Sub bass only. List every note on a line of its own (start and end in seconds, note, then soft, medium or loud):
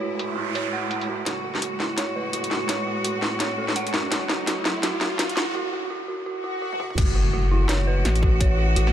1.26 1.97 F#1 medium
2.16 2.68 F#1 medium
3.05 3.57 E1 medium
3.94 4.11 F#2 medium
4.12 4.82 F#1 medium
5.01 5.54 F#1 loud
6.98 8.04 F#1 loud
8.05 8.75 A1 loud
8.76 8.93 A1 loud